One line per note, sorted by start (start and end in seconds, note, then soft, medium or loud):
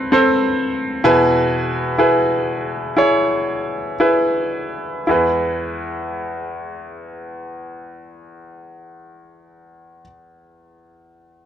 0.00 1.00 A2 medium
0.00 1.00 E3 medium
0.00 0.12 C4 medium
0.00 0.12 A4 medium
0.00 1.05 B4 medium
0.00 0.13 C5 medium
0.12 0.99 C4 medium
0.12 0.99 A4 medium
0.12 0.99 C5 medium
1.04 5.04 E2 soft
1.04 5.04 B2 soft
1.04 1.93 E4 medium
1.04 1.94 G#4 medium
1.04 1.94 B4 medium
1.98 2.91 E4 medium
1.98 2.92 G#4 soft
1.98 2.92 B4 medium
2.97 3.94 E4 medium
2.97 3.94 G#4 medium
2.97 3.95 C#5 medium
4.00 5.02 E4 medium
4.00 5.02 G#4 soft
4.00 5.02 B4 medium
5.07 10.02 E2 soft
5.07 10.00 E4 soft
5.07 10.02 G#4 soft
5.07 10.04 B4 soft